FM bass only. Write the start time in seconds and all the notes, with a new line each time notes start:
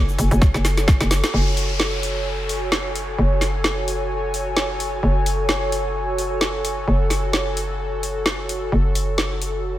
Already playing: F#1
0.18 F#1
0.31 F#1
0.54 F#1
1.00 F#1
1.34 F#1
3.19 F#1
5.03 F#1
6.88 F#1
8.72 F#1